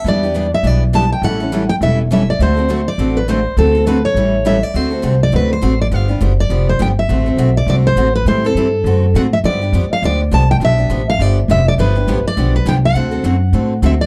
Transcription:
X:1
M:4/4
L:1/8
Q:"Swing" 1/4=205
K:Dmix
V:1 name="Steel-string acoustic guitar"
d3 e d z a g | f3 g e z e d | c3 d2 B c2 | A2 B ^c3 e d |
c3 d B c2 d | =f2 z d2 c g e- | e3 d d c2 B | c A4- A f e |
d3 =f d z a g | e3 =f d z e d | B3 d2 B g f- | f6 e d |]
V:2 name="Steel-string acoustic guitar"
[E,B,DG] [B,DG] [E,B,DG] z [E,B,DG] z [E,B,DG] z | [E,G,^CEA] [CEA] [E,G,CEA] z [E,G,CEA] z [E,G,CEA] z | [D,A,CFA] [CFA] [D,A,CFA] z [D,A,CFA] z [D,A,CFA] z | [D,A,CFA] [CFA] [D,A,CFA] z [E,G,^CEA] z [E,G,CEA] z |
[D,A,CFA] [CFA] [D,A,CFA] z [D,A,CFA] z [D,A,CFA] z | [D,=F,B,DG] [B,DG] [D,F,B,DG] z [D,F,B,DG] z [D,F,B,DG] z | [D,A,CFA] [CFA] [D,A,CFA] z [D,A,CFA] z [D,A,CFA] z | [E,G,CEA] [CEA] [E,G,CEA] z [D,A,CFA] z [D,A,CFA] z |
[D,=F,B,DG] [B,DG] [D,F,B,DG] z [D,F,B,DG] z [D,F,B,DG] z | [D,=F,B,DG] [B,DG] [D,F,B,DG] z [D,F,B,DG] z [D,F,B,DG] z | [D,=F,B,DG] [B,DG] [D,F,B,DG] z [D,F,B,DG] z [D,F,B,DG] z | [D,A,CFA] [CFA] [D,A,CFA] z [D,A,CFA] z [D,A,CFA] z |]
V:3 name="Steel-string acoustic guitar"
[E,G,DEB] z [E,G,DEB] z [E,G,DEB] z [E,G,DEB] z | [E,G,^CEA] z [E,G,CEA] z [E,G,CEA] z [E,G,CEA] z | [D,A,CFA] z [D,A,CFA] z [D,A,CFA] z [D,A,CFA] z | [D,A,CFA] z [D,A,CFA] z [E,G,^CEA] z [E,G,CEA] z |
z8 | z8 | z8 | z8 |
z8 | z8 | [D,=F,B,DG] z [D,F,B,DG] z [D,F,B,DG] z [D,F,B,DG] z | [D,A,CFA] z [D,A,CFA] z [D,A,CFA] z [D,A,CFA] z |]
V:4 name="Upright bass" clef=bass
E,,4 B,,,4 | A,,,4 E,,,4 | D,,4 A,,,4 | D,,4 A,,,4 |
D,,2 C,,2 D,,2 A,,,2 | G,,,2 F,,,2 =F,,,2 G,,,2 | A,,,2 B,,,2 C,,2 A,,,2 | A,,2 G,,2 F,,2 A,,2 |
G,,2 =F,, z D,,2 C,,2 | B,,,2 A,,,2 G,,,2 =F,,,2 | G,,,2 A,,, z B,,,2 C,,2 | D,,2 F,,2 A,,2 D,,2 |]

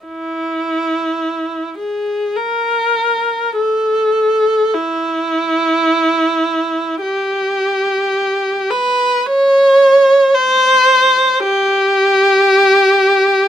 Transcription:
X:1
M:3/4
L:1/8
Q:1/4=53
K:Elyd
V:1 name="Viola"
E3 G A2 | =A2 E4 | =G3 B c2 | ^B2 =G4 |]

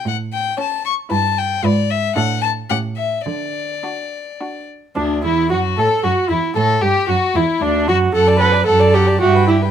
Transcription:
X:1
M:3/4
L:1/16
Q:1/4=113
K:D
V:1 name="Violin"
f2 g2 a2 c'2 a2 g2 | d2 e2 f2 a2 f2 e2 | d8- d2 z2 | D2 E2 F2 A2 F2 E2 |
A2 G2 F2 E2 D2 F2 | f a f a f a f a e g e g |]
V:2 name="Violin"
z4 c4 B4 | B4 A4 G4 | z4 F4 F4 | D2 E2 F2 A2 F2 E2 |
A2 G2 F2 E2 D2 F2 | A d A d A d A d G B G B |]
V:3 name="Viola"
z4 C4 E4 | ^E4 D4 C4 | z4 D4 D4 | D2 E2 F2 A2 F2 E2 |
A2 G2 F2 E2 D2 F2 | A2 B2 A2 G2 F2 E2 |]
V:4 name="Cello" clef=bass
A,,4 z4 G,,4 | ^G,,4 A,,4 A,,4 | D,4 z8 | D,,2 E,,2 F,,2 A,,2 F,,2 E,,2 |
A,,2 G,,2 F,,2 E,,2 D,,2 F,,2 | F,,4 F,,4 G,,4 |]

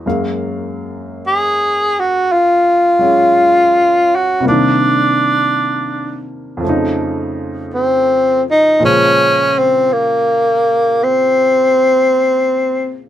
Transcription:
X:1
M:4/4
L:1/16
Q:"Swing" 1/4=55
K:Bbm
V:1 name="Tenor saxophone"
z4 A2 G2 F6 G2 | =D6 z6 C2 E2 | D2 C2 B,4 C6- C z |]
V:2 name="Grand piano" clef=bass
[G,,G,A,B,f]8- [G,,G,A,B,f]2 [G,A,D]6 | [C,E,=G,B,=D]8 [F,,_D,F,=A,E]8 | [B,,D,F,A,c]16 |]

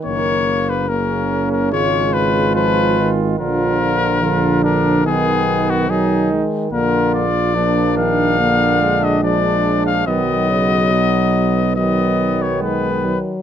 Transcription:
X:1
M:4/4
L:1/16
Q:1/4=72
K:Bbphr
V:1 name="Trumpet"
d3 c B3 B d2 c2 c3 z | B6 B2 A3 G A2 z2 | B2 =d4 f4- f e d3 f | ^d8 d3 _d =B3 z |]
V:2 name="Trumpet"
B,4 D4 F8 | F4 F2 =D2 C4 E2 z2 | F4 =D8 D4 | =B,8 B,6 z2 |]
V:3 name="French horn" clef=bass
B,4 B,4 A,8 | F,4 =D,4 E,4 G,2 A,2 | B,2 z2 B,4 B,2 A,6 | ^F,8 F,4 A,2 F,2 |]
V:4 name="Trombone" clef=bass
E,2 z2 D,8 F,2 E,2 | =D,2 D,2 F,4 E,4 E,4 | =D,2 z2 F,2 E,2 D,4 F,4 | ^D,2 _D,2 =B,,4 ^D,8 |]
V:5 name="Tuba" clef=bass
G,,,8 A,,,8 | B,,,8 C,,6 z2 | B,,,16 | =B,,,12- B,,,2 z2 |]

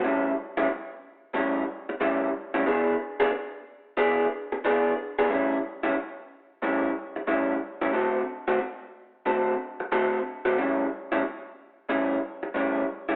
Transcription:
X:1
M:4/4
L:1/16
Q:"Swing" 1/4=91
K:Amix
V:1 name="Clean electric guitar"
[A,,G,CE] z2 [A,,G,CE] z4 [A,,G,CE] z3 [A,,G,CE] z2 [A,,G,CE] | [E,B,D^G] z2 [E,B,DG] z4 [E,B,DG] z3 [E,B,DG] z2 [E,B,DG] | [A,,G,CE] z2 [A,,G,CE] z4 [A,,G,CE] z3 [A,,G,CE] z2 [A,,G,CE] | [D,A,=CF] z2 [D,A,CF] z4 [D,A,CF] z3 [D,A,CF] z2 [D,A,CF] |
[A,,G,CE] z2 [A,,G,CE] z4 [A,,G,CE] z3 [A,,G,CE] z2 [A,,G,CE] |]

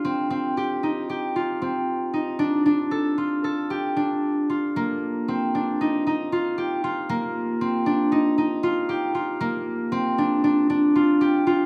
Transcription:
X:1
M:9/8
L:1/8
Q:3/8=77
K:Cdor
V:1 name="Harp"
C C G E G F C2 E | D D A F A G D2 F | B,2 C D E E F G F | B,2 C D E E F G F |
B,2 C D D D F G F |]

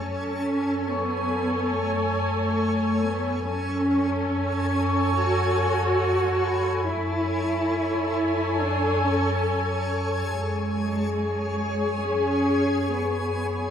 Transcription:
X:1
M:4/4
L:1/8
Q:1/4=70
K:F#m
V:1 name="Vibraphone"
z2 [cc']6 | z3 [cc']4 b- | b4- b z3 | z8 |]
V:2 name="Violin section"
g8 | g8 | g8 | g8 |]
V:3 name="Synth texture"
[Acg]8 | [Acg]8 | [Acg]8 | [Gcg]8 |]
V:4 name="Viola section"
[Ac]8 | [Ac]8 | [Ac]8 | [Gc]8 |]
V:5 name="Cello section"
C2 B,2 A,3 B, | C4 F4 | E4 D C2 z | G,4 C2 B,2 |]
V:6 name="Double bass section" clef=bass
F,,8 | F,,8 | F,,8 | F,,8 |]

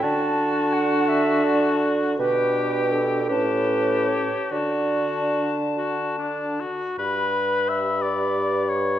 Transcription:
X:1
M:6/8
L:1/8
Q:3/8=54
K:D
V:1 name="Flute"
a6 | g3 a3 | a4- a z | b6 |]
V:2 name="Clarinet"
a2 f e d z | B2 A B2 c | d3 z3 | z3 B3 |]
V:3 name="Oboe"
F6 | G3 G3 | F3 F D F | B2 e d2 c |]
V:4 name="French horn"
D6 | D3 C3 | D4- D z | G6 |]
V:5 name="Bassoon" clef=bass
D,6 | B,,3 A,,3 | D,4- D, z | G,,6 |]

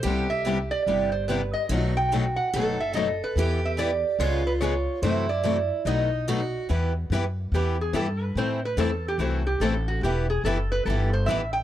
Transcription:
X:1
M:4/4
L:1/8
Q:"Swing" 1/4=144
K:Em
V:1 name="Resonator guitar played with a steel bar"
c e2 d2 c B ^d- | ^d g2 f2 e d B- | B e d2 ^c B c2 | c d2 z ^d3 z |
z4 G ^G A B | c B A G F G A F | G ^G A B A c e =g |]
V:2 name="Steel-string acoustic guitar"
G8 | F4 A4 | G4 ^E4 | E4 ^D2 F2 |
z8 | z8 | z8 |]
V:3 name="Steel-string acoustic guitar"
[C,G,B,EG] z [C,G,B,EG] z [C,G,B,EG] z [C,G,B,EG] z | [B,,^D,F,B,^DA] z [B,,D,F,B,DA] z [B,,D,F,B,DA] z [B,,D,F,B,DA] z | [E,B,EGB] z [E,B,EGB] z [^C,^G,B,^E^G] z [C,G,B,EG] z | [F,CEA] z [F,CEA] z [B,,^D,F,B,^DA] z [B,,D,F,B,DA] z |
[E,B,EGB] z [E,B,EGB] z [E,B,EGB] z [E,B,EGB] z | [E,A,CEA] z [E,A,CEA] z [E,A,CEA] z [E,A,CEA] z | [E,B,EGB] z [E,B,EGB] z [E,B,EGB] z [E,B,EGB] z |]
V:4 name="Steel-string acoustic guitar"
[C,G,B,EG] z [C,G,B,EG] z [C,G,B,EG] z [C,G,B,EG] z | [B,,F,A,^DF] z [B,,F,A,DF] z [B,,F,A,DF] z [B,,F,A,DF] z | [E,B,EG] z [E,B,EG] z [^C,^G,B,^E^G] z [C,G,B,EG] z | [C,E,A,EF] z [C,E,A,EF] z [B,,F,A,^DF] z [B,,F,A,DF] z |
[E,B,EG] z [E,B,EG] z [E,B,EG] z [E,B,EG] z | [E,A,CEA] z [E,A,CEA] z [E,A,CEA] z [E,A,CEA] z | [E,B,EG] z [E,B,EG] z [E,B,EG] z [E,B,EG] z |]
V:5 name="Upright bass" clef=bass
C,,4 G,,,4 | B,,,4 F,,,4 | E,,4 ^C,,4 | F,,4 B,,,4 |
E,,2 F,,2 E,,2 G,,2 | A,,2 E,,2 C,,2 A,,,2 | E,,,2 F,,,2 G,,,2 A,,,2 |]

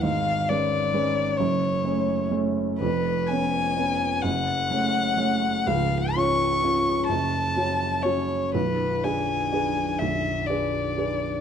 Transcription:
X:1
M:6/8
L:1/8
Q:3/8=42
K:F#m
V:1 name="Violin"
=f d2 c2 z | B g2 f3 | ^e c'2 a2 c | B g2 e d2 |]
V:2 name="Grand piano"
[G,,,G,,] [G,CB] [G,CB] [F,,,F,,] [A,Cc] [A,Cc] | [^E,,,^E,,] [B,Cc] [B,Cc] [F,,,F,,] [A,Cc] [A,Cc] | [C,,,C,,] [C^Ec] [CEc] [F,,,F,,] [CFc] [CFc] | [B,,,,B,,,] [DGB] [DGB] [B,,,,B,,,] [DGB] [DGB] |]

